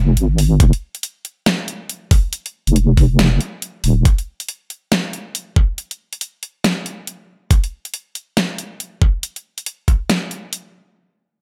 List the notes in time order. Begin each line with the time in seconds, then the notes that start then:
Already playing: F1
0.17 G#1, closed hi-hat
0.38 open hi-hat
0.60 F1, kick, closed hi-hat
0.73 closed hi-hat
0.95 closed hi-hat
1.03 closed hi-hat
1.25 closed hi-hat
1.46 snare, closed hi-hat
1.68 closed hi-hat
1.89 closed hi-hat
2.11 kick, open hi-hat
2.33 closed hi-hat
2.46 closed hi-hat
2.67 F1, closed hi-hat
2.76 closed hi-hat
2.97 kick, open hi-hat
3.19 F1, snare, closed hi-hat
3.41 closed hi-hat
3.62 closed hi-hat
3.84 D#1, open hi-hat
4.05 kick, closed hi-hat
4.18 closed hi-hat
4.40 closed hi-hat
4.49 closed hi-hat
4.70 closed hi-hat
4.92 snare, closed hi-hat
5.13 closed hi-hat
5.35 closed hi-hat
5.56 kick
5.78 closed hi-hat
5.91 closed hi-hat
6.13 closed hi-hat
6.21 closed hi-hat
6.43 closed hi-hat
6.64 snare, closed hi-hat
6.86 closed hi-hat
7.07 closed hi-hat
7.51 kick, closed hi-hat
7.64 closed hi-hat
7.85 closed hi-hat
7.94 closed hi-hat
8.15 closed hi-hat
8.37 snare, closed hi-hat
8.58 closed hi-hat
8.80 closed hi-hat
9.02 kick
9.23 closed hi-hat
9.36 closed hi-hat
9.58 closed hi-hat
9.66 closed hi-hat
9.88 kick, closed hi-hat
10.10 snare, closed hi-hat
10.31 closed hi-hat
10.53 closed hi-hat